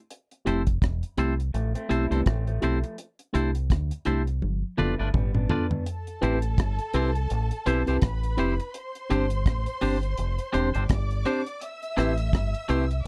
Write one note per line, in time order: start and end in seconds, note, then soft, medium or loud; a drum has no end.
0.10 closed hi-hat medium
0.31 closed hi-hat soft
0.45 0.80 F1 medium
0.45 0.60 A3 medium
0.45 0.61 C4 medium
0.45 0.61 E4 medium
0.45 0.62 E4 medium
0.45 0.61 G4 medium
0.45 0.62 A4 medium
0.45 0.62 C5 medium
0.45 closed hi-hat medium
0.67 kick medium
0.67 closed hi-hat medium
0.82 1.02 E1 medium
0.82 kick loud
0.82 cross-stick loud
0.82 closed hi-hat medium
1.03 closed hi-hat medium
1.17 1.52 C2 medium
1.17 1.33 A3 medium
1.17 1.33 C4 medium
1.17 1.33 E4 medium
1.17 1.33 G4 medium
1.17 1.34 A4 medium
1.17 1.34 C5 medium
1.17 closed hi-hat medium
1.40 closed hi-hat medium
1.54 1.74 A1 medium
1.54 1.74 F3 medium
1.54 1.74 A3 medium
1.54 closed hi-hat medium
1.75 1.90 A3 medium
1.75 1.89 C4 medium
1.75 closed hi-hat medium
1.89 2.10 B1 medium
1.89 2.05 A3 medium
1.89 2.05 C4 medium
1.89 2.11 C4 medium
1.89 2.05 E4 medium
1.89 2.10 E4 medium
1.89 2.05 G4 medium
1.89 2.06 A4 medium
1.89 2.06 C5 medium
1.89 closed hi-hat medium
2.10 2.25 C2 medium
2.10 2.21 A3 medium
2.10 2.26 B3 medium
2.10 2.22 C4 medium
2.10 2.20 C4 medium
2.10 2.25 D4 medium
2.10 2.22 E4 medium
2.10 2.20 E4 medium
2.10 2.22 G4 medium
2.10 2.20 A4 medium
2.10 2.20 C5 medium
2.10 closed hi-hat medium
2.26 2.60 A1 medium
2.26 2.46 A3 medium
2.26 2.46 C4 medium
2.26 kick loud
2.26 cross-stick loud
2.26 closed hi-hat medium
2.47 2.96 F3 medium
2.47 2.96 A3 medium
2.47 closed hi-hat soft
2.61 2.82 B1 medium
2.61 2.77 A3 medium
2.61 2.77 C4 medium
2.61 2.78 C4 medium
2.61 2.77 E4 medium
2.61 2.78 E4 medium
2.61 2.77 G4 medium
2.61 2.78 A4 medium
2.61 2.78 C5 loud
2.61 closed hi-hat medium
2.84 muted clean electric guitar stroke soft
2.84 closed hi-hat soft
2.98 closed hi-hat medium
3.19 closed hi-hat soft
3.33 3.69 C2 medium
3.33 3.49 A3 medium
3.33 3.49 C4 medium
3.33 3.49 D4 medium
3.33 3.49 E4 medium
3.33 3.50 E4 medium
3.33 3.49 G4 medium
3.33 3.50 A4 medium
3.33 3.50 C5 medium
3.33 closed hi-hat medium
3.55 closed hi-hat medium
3.70 3.90 D2 medium
3.70 kick loud
3.70 cross-stick loud
3.70 closed hi-hat medium
3.91 closed hi-hat medium
4.05 4.40 C2 medium
4.05 4.21 A3 medium
4.05 4.21 C4 medium
4.05 4.21 D4 medium
4.05 4.21 E4 medium
4.05 4.22 E4 medium
4.05 4.21 G4 medium
4.05 4.22 A4 medium
4.05 4.22 C5 medium
4.05 closed hi-hat medium
4.27 closed hi-hat soft
4.42 4.62 G1 medium
4.42 high tom medium
4.77 4.98 F1 medium
4.77 4.99 E3 medium
4.77 4.98 G3 medium
4.77 4.93 B3 medium
4.77 4.93 D4 medium
4.77 4.93 F4 medium
4.77 4.94 F4 medium
4.77 4.93 A4 medium
4.77 4.94 B4 medium
4.77 4.94 D5 medium
4.77 mid tom medium
4.98 5.14 G1 medium
4.98 5.14 F3 medium
4.98 5.13 A3 medium
4.98 5.09 D4 soft
4.98 5.08 F4 soft
4.98 5.08 B4 medium
4.98 5.08 D5 medium
5.14 5.48 G1 medium
5.14 5.34 G3 medium
5.14 5.34 B3 medium
5.14 kick medium
5.14 mid tom medium
5.35 5.84 B3 medium
5.35 5.84 D4 medium
5.35 mid tom medium
5.49 5.65 B3 medium
5.49 5.65 D4 medium
5.49 5.65 F4 medium
5.49 5.66 F4 medium
5.49 5.65 A4 medium
5.49 5.66 B4 medium
5.49 5.66 D5 medium
5.49 floor tom medium
5.71 floor tom medium
5.86 7.98 A4 medium
5.86 7.98 A5 medium
5.86 closed hi-hat medium
6.07 closed hi-hat soft
6.21 6.56 A1 loud
6.21 6.37 C4 medium
6.21 6.37 E4 medium
6.21 6.38 E4 medium
6.21 6.37 G4 medium
6.21 6.38 G4 medium
6.21 6.37 B4 loud
6.21 6.38 C5 medium
6.21 closed hi-hat medium
6.42 closed hi-hat medium
6.58 6.78 G1 loud
6.58 kick loud
6.58 cross-stick loud
6.58 closed hi-hat medium
6.79 closed hi-hat medium
6.94 7.28 C2 medium
6.94 7.09 C4 medium
6.94 7.10 C4 medium
6.94 7.09 E4 medium
6.94 7.10 E4 medium
6.94 7.09 G4 medium
6.94 7.10 G4 medium
6.94 7.09 B4 loud
6.94 7.10 C5 medium
6.94 closed hi-hat medium
7.15 closed hi-hat medium
7.30 7.50 A1 medium
7.30 closed hi-hat medium
7.51 closed hi-hat medium
7.66 7.86 B1 medium
7.66 7.81 C4 medium
7.66 7.81 C4 loud
7.66 7.81 E4 medium
7.66 7.82 E4 medium
7.66 7.81 G4 medium
7.66 7.82 G4 loud
7.66 7.81 B4 loud
7.66 7.82 C5 loud
7.66 closed hi-hat medium
7.86 8.02 C2 medium
7.86 7.98 C4 medium
7.86 7.97 C4 medium
7.86 7.98 E4 medium
7.86 7.97 E4 medium
7.86 7.98 G4 medium
7.86 7.96 G4 medium
7.86 7.98 B4 medium
7.86 7.96 C5 medium
7.86 closed hi-hat medium
8.02 8.36 A1 loud
8.02 8.73 B4 medium
8.02 8.73 B5 medium
8.02 kick loud
8.02 cross-stick loud
8.02 closed hi-hat medium
8.23 closed hi-hat soft
8.37 8.58 F1 medium
8.37 8.53 C4 medium
8.37 8.53 E4 medium
8.37 8.53 G4 medium
8.37 8.54 G4 medium
8.37 8.53 B4 loud
8.37 8.54 C5 loud
8.37 closed hi-hat medium
8.60 muted clean electric guitar stroke soft
8.60 closed hi-hat medium
8.74 10.86 C5 medium
8.74 10.86 C6 medium
8.74 closed hi-hat medium
8.95 closed hi-hat soft
9.10 9.44 G1 loud
9.10 9.25 C4 medium
9.10 9.25 D4 medium
9.10 9.25 G4 medium
9.10 9.26 G4 medium
9.10 9.25 C5 loud
9.10 9.26 C5 medium
9.10 closed hi-hat medium
9.30 closed hi-hat medium
9.46 9.66 A1 medium
9.46 kick loud
9.46 cross-stick loud
9.46 closed hi-hat medium
9.66 closed hi-hat medium
9.81 10.16 G1 medium
9.81 9.97 C4 medium
9.81 9.97 D4 medium
9.81 9.97 G4 medium
9.81 9.97 C5 loud
9.81 9.97 C5 medium
9.81 open hi-hat medium
10.03 closed hi-hat medium
10.17 10.38 F1 medium
10.17 closed hi-hat medium
10.39 closed hi-hat medium
10.53 10.74 E1 loud
10.53 10.68 C4 loud
10.53 10.69 C4 medium
10.53 10.68 D4 loud
10.53 10.69 D4 medium
10.53 10.69 G4 medium
10.53 10.69 G4 loud
10.53 10.69 C5 medium
10.53 10.69 C5 loud
10.53 closed hi-hat medium
10.74 10.89 G1 medium
10.74 10.84 C4 soft
10.74 10.83 D4 medium
10.74 10.83 G4 medium
10.74 10.83 C5 medium
10.74 closed hi-hat medium
10.89 11.23 G1 loud
10.89 11.60 D5 medium
10.89 11.60 D6 medium
10.89 kick loud
10.89 cross-stick loud
10.89 closed hi-hat medium
11.11 closed hi-hat soft
11.26 11.41 C4 loud
11.26 11.41 C4 medium
11.26 11.41 D4 medium
11.26 11.41 G4 medium
11.26 11.41 C5 loud
11.26 closed hi-hat medium
11.46 closed hi-hat medium
11.61 13.03 E5 medium
11.61 13.03 E6 loud
11.61 closed hi-hat medium
11.82 closed hi-hat soft
11.97 12.31 A1 loud
11.97 12.12 A3 medium
11.97 12.12 C4 medium
11.97 12.12 E4 medium
11.97 12.12 G4 medium
11.97 12.13 G4 medium
11.97 12.12 B4 loud
11.97 12.13 C5 medium
11.97 cross-stick medium
11.97 closed hi-hat medium
12.18 closed hi-hat medium
12.33 12.53 G1 loud
12.33 kick loud
12.33 cross-stick loud
12.33 closed hi-hat loud
12.54 closed hi-hat medium
12.69 13.03 C2 medium
12.69 12.84 A3 medium
12.69 12.84 C4 medium
12.69 12.84 E4 medium
12.69 12.84 G4 medium
12.69 12.84 B4 loud
12.69 12.85 C5 loud
12.69 closed hi-hat medium
12.91 closed hi-hat medium